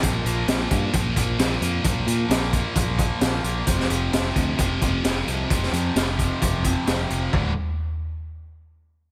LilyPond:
<<
  \new Staff \with { instrumentName = "Overdriven electric guitar" } { \clef bass \time 4/4 \key bes \lydian \tempo 4 = 131 <bes, f bes>8 <bes, f bes>8 <bes, f bes>8 <bes, f bes>8 <bes, f bes>8 <bes, f bes>8 <bes, f bes>8 <bes, f bes>8 | <bes, f bes>8 <bes, f bes>8 <bes, f bes>8 <bes, f bes>8 <bes, f bes>8 <bes, f bes>8 <bes, f bes>8 <bes, f bes>8 | <f, c f>8 <f, c f>8 <f, c f>8 <f, c f>8 <f, c f>8 <f, c f>8 <f, c f>8 <f, c f>8 | <f, c f>8 <f, c f>8 <f, c f>8 <f, c f>8 <f, c f>8 <f, c f>8 <f, c f>8 <f, c f>8 |
<d, a, d>8 r2. r8 | }
  \new Staff \with { instrumentName = "Overdriven electric guitar" } { \clef bass \time 4/4 \key bes \lydian <bes, f bes>8 <bes, f bes>8 <bes, f bes>8 <bes, f bes>8 <bes, f bes>8 <bes, f bes>8 <bes, f bes>8 <bes, f bes>8 | <bes, f bes>8 <bes, f bes>8 <bes, f bes>8 <bes, f bes>8 <bes, f bes>8 <bes, f bes>8 <bes, f bes>8 <bes, f bes>8 | <f, c f>8 <f, c f>8 <f, c f>8 <f, c f>8 <f, c f>8 <f, c f>8 <f, c f>8 <f, c f>8 | <f, c f>8 <f, c f>8 <f, c f>8 <f, c f>8 <f, c f>8 <f, c f>8 <f, c f>8 <f, c f>8 |
<d, a, d>8 r2. r8 | }
  \new Staff \with { instrumentName = "Picked electric bass" } { \clef bass \time 4/4 \key bes \lydian bes,,8 bes,,8 bes,,8 g,8 bes,,8 bes,,8 bes,,8 f,8 | bes,,8 bes,8 bes,,4 bes,,4 bes,,8 bes,,8 | f,,8 f,,8 f,,8 d,8 f,,8 f,,8 f,,8 c,8 | f,,8 f,8 f,,4 f,,4 f,,8 f,,8 |
d,,8 r2. r8 | }
  \new DrumStaff \with { instrumentName = "Drums" } \drummode { \time 4/4 <hh bd>8 hh8 <hh sn>8 <hh bd>8 <hh bd>8 <hh bd>8 <hh sn>8 hh8 | <hh bd>8 hh8 <hh sn>8 <hh bd>8 <hh bd>8 <hh bd>8 <hh sn>8 hh8 | <hh bd>16 sn16 hh8 <hh sn>8 <hh bd>8 <hh bd>8 <hh bd>8 <hh sn>8 hh8 | <hh bd>16 sn16 hh8 <hh sn>8 <hh bd>8 <hh bd>8 <hh bd>8 <hh sn>8 hh8 |
<bd tomfh>4 r4 r4 r4 | }
>>